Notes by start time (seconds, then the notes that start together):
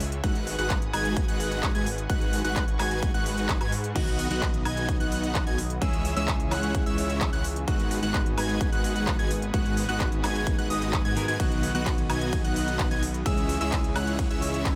Already playing: C#2 C#5 E5 G#5 E6
0.00 open hi-hat
0.12 closed hi-hat
0.24 G#1 G#3 D#4 F#4 B4 F#5 D#6 F#6, kick, closed hi-hat
0.35 closed hi-hat
0.47 open hi-hat
0.58 G#1 G#3 D#4 F#4 B4 F#5 F#6, closed hi-hat
0.70 kick, clap, closed hi-hat
0.82 closed hi-hat
0.93 G#1 G#3 D#4 F#4 B4 G#5 G#6, open hi-hat, high woodblock
1.05 closed hi-hat
1.17 kick, closed hi-hat
1.28 G#1 G#3 D#4 F#4 B4 F#5 F#6, closed hi-hat
1.40 open hi-hat
1.52 closed hi-hat
1.63 kick, clap, closed hi-hat
1.75 G#1 G#3 D#4 F#4 B4 G#5 G#6, closed hi-hat
1.86 open hi-hat
1.98 closed hi-hat
2.10 G#1 G#3 D#4 F#4 B4 F#5 C#6 F#6, kick, closed hi-hat
2.21 closed hi-hat
2.33 open hi-hat
2.44 G#1 G#3 D#4 F#4 B4 F#5 F#6, closed hi-hat
2.56 kick, clap, closed hi-hat
2.68 closed hi-hat
2.79 G#1 G#3 D#4 F#4 B4 G#5 G#6, clap, open hi-hat, high woodblock
2.91 closed hi-hat
3.03 kick, closed hi-hat
3.14 G#1 G#3 D#4 F#4 B4 F#5 F#6, closed hi-hat
3.26 open hi-hat
3.38 closed hi-hat
3.49 kick, clap, closed hi-hat
3.61 G#2 G#3 D#4 F#4 B4 G#5 G#6, closed hi-hat, high woodblock
3.72 open hi-hat
3.84 closed hi-hat
3.95 B1 D#3 F#3 B3 D#4 F#4 D#5 F#5 D#6 F#6, kick, closed hi-hat, crash
4.07 closed hi-hat
4.19 open hi-hat
4.29 B1 D#3 F#3 B3 D#4 F#4 D#5 F#5 F#6, closed hi-hat
4.42 kick, clap, closed hi-hat
4.54 closed hi-hat
4.65 B1 B3 D#4 F#4 D#5 G#5 G#6, open hi-hat, high woodblock
4.77 closed hi-hat
4.89 kick, closed hi-hat
5.00 B1 B3 D#4 F#4 D#5 F#5 F#6, closed hi-hat
5.12 open hi-hat
5.23 closed hi-hat
5.35 kick, clap, closed hi-hat
5.47 B1 B3 D#4 F#4 D#5 G#5 G#6, closed hi-hat
5.58 open hi-hat
5.70 closed hi-hat
5.81 C#2 E3 G#3 C#4 E4 G#4 C#5 E5 G#5 E6, kick, closed hi-hat
5.93 closed hi-hat
6.05 open hi-hat
6.15 C#2 E3 G#3 C#4 E4 G#4 C#5 E5 E6, closed hi-hat
6.28 kick, clap, closed hi-hat
6.40 closed hi-hat
6.51 C#2 G#3 C#4 E4 C#5 F#5 F#6, clap, open hi-hat, high woodblock
6.63 closed hi-hat
6.75 kick, closed hi-hat
6.86 C#2 G#3 C#4 E4 C#5 E5 E6, closed hi-hat
6.98 open hi-hat
7.10 closed hi-hat
7.21 kick, clap, closed hi-hat
7.33 C#2 G#3 C#4 E4 C#5 F#5 F#6, closed hi-hat
7.44 open hi-hat
7.56 closed hi-hat
7.67 G#1 G#2 D#3 G#3 B3 D#4 F#4 B4 F#5 G#5 D#6 F#6, kick, closed hi-hat
7.79 closed hi-hat
7.91 open hi-hat
8.02 G#1 G#2 D#3 G#3 B3 D#4 F#4 B4 F#5 F#6, closed hi-hat
8.14 kick, clap, closed hi-hat
8.26 closed hi-hat
8.37 G#1 G#3 D#4 F#4 B4 G#5 G#6, open hi-hat, high woodblock
8.49 closed hi-hat
8.61 kick, closed hi-hat
8.72 G#1 G#3 D#4 F#4 B4 F#5 F#6, closed hi-hat
8.84 open hi-hat
8.96 closed hi-hat
9.07 kick, clap, closed hi-hat
9.19 G#1 G#3 D#4 F#4 B4 G#5 G#6, closed hi-hat
9.31 open hi-hat
9.42 closed hi-hat
9.53 G#1 G#2 D#3 G#3 B3 D#4 F#4 B4 F#5 F#6, kick, closed hi-hat
9.66 closed hi-hat
9.77 open hi-hat
9.88 G#1 G#2 D#3 G#3 B3 D#4 F#4 B4 F#5 F#6, closed hi-hat
10.00 kick, clap, closed hi-hat
10.12 closed hi-hat
10.23 G#1 G#3 D#4 F#4 B4 G#5 G#6, clap, open hi-hat, high woodblock
10.35 closed hi-hat
10.47 kick, closed hi-hat
10.58 G#1 G#3 D#4 F#4 B4 F#5 F#6, closed hi-hat
10.70 G#1 G#3 D#4 F#4 B4 D#5 D#6, open hi-hat
10.82 closed hi-hat
10.93 kick, clap, closed hi-hat
11.05 G#2 G#3 D#4 F#4 B4 G#5 G#6, closed hi-hat
11.16 D#3 G#3 B3 A#4, open hi-hat
11.28 G#2 G#3 D#4 F#4 B4 G#5 G#6, closed hi-hat
11.39 B1 D#3 F#3 B3 D#4 F#4 D#5 F#5 F#6, kick, closed hi-hat, ride
11.52 closed hi-hat
11.63 open hi-hat
11.74 B1 D#3 F#3 B3 D#4 F#4 D#5 F#5 F#6, closed hi-hat
11.86 kick, clap, closed hi-hat, ride
11.98 closed hi-hat
12.10 B1 B3 D#4 F#4 D#5 G#5 G#6, open hi-hat, high woodblock
12.21 closed hi-hat
12.33 kick, closed hi-hat, ride
12.44 B1 B3 D#4 F#4 D#5 F#5 F#6, closed hi-hat
12.56 open hi-hat
12.68 closed hi-hat
12.79 kick, clap, closed hi-hat, ride
12.91 B1 B3 D#4 F#4 D#5 G#5 G#6, closed hi-hat
13.03 open hi-hat
13.14 closed hi-hat
13.25 C#2 E3 G#3 C#4 E4 G#4 C#5 E5 G#5 E6, kick, closed hi-hat, ride
13.38 closed hi-hat
13.49 open hi-hat
13.60 C#2 E3 G#3 C#4 E4 G#4 C#5 E5 E6, closed hi-hat
13.72 kick, clap, closed hi-hat, ride
13.84 closed hi-hat
13.96 C#2 G#3 C#4 E4 C#5 F#5 F#6, clap, open hi-hat, high woodblock
14.07 closed hi-hat
14.19 kick, closed hi-hat, ride
14.30 C#2 G#3 C#4 E4 C#5 E5 E6, closed hi-hat
14.42 open hi-hat
14.54 closed hi-hat
14.65 kick, clap, closed hi-hat, ride